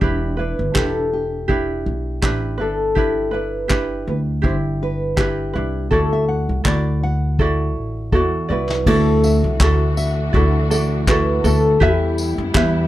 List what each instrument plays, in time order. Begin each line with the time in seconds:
Already playing: nylon-string guitar D5
0.01 upright bass E1, ukulele D4 E4 G4 B4, kick
0.37 ukulele D4 E4 B4, nylon-string guitar B4
0.59 upright bass G1
0.74 upright bass E1, ukulele D4 E4 G4 B4, nylon-string guitar A4, kick, clap
1.13 nylon-string guitar G4
1.48 ukulele D4 E4 G4 B4, kick
1.86 upright bass B1
2.22 upright bass A1, ukulele D4 E4 G4 B4, kick, clap
2.58 upright bass G1, ukulele D4 E4 B4, nylon-string guitar A4
2.95 ukulele D4 E4 G4 B4, kick
3.31 ukulele D4 E4 B4, nylon-string guitar B4
3.68 ukulele D4 E4 G4 B4, kick, clap
4.07 upright bass D2, nylon-string guitar B4
4.42 upright bass G1, ukulele D4 E4 G4, nylon-string guitar C5, kick
4.83 nylon-string guitar B4
5.17 ukulele D4 E4 G4 B4, nylon-string guitar G4, kick, clap
5.53 upright bass C2, ukulele D4 E4 B4
5.91 upright bass D2, ukulele E4 F#4 A4 D5, nylon-string guitar A4, kick
6.13 nylon-string guitar E5
6.29 nylon-string guitar F#5
6.49 upright bass C2
6.64 upright bass D2, ukulele E4 F#4 A4 D5, nylon-string guitar D5, kick, clap
7.03 nylon-string guitar F#5
7.39 ukulele E4 F#4 A4 D5, kick
7.76 upright bass A1
8.12 upright bass E2, ukulele E4 F#4 A4 D5, nylon-string guitar F#4, kick
8.49 upright bass C2, ukulele E4 F#4 D5, nylon-string guitar B4
8.70 snare
8.86 upright bass D2, string section E3 A3 D4 F#4, ukulele E4 F#4 A4 D5, nylon-string guitar A4, kick, crash
9.24 nylon-string guitar E5, tambourine
9.44 upright bass C2
9.60 upright bass D2, ukulele E4 F#4 A4 D5, kick, clap
9.97 nylon-string guitar E5, tambourine
10.33 upright bass D2, ukulele E4 F#4 A4 D5, kick
10.70 ukulele E4 F#4 A4, nylon-string guitar D5, tambourine
11.07 ukulele E4 F#4 A4 D5, nylon-string guitar B4, kick, clap
11.44 upright bass D2, ukulele E4 F#4 A4, nylon-string guitar A4, tambourine
11.80 upright bass E2, string section E3 G3 B3 E4, ukulele E4 G4 B4 E5, nylon-string guitar G4, kick
12.18 tambourine
12.38 upright bass F#2
12.54 upright bass E2, ukulele E4 G4 B4 E5, kick, clap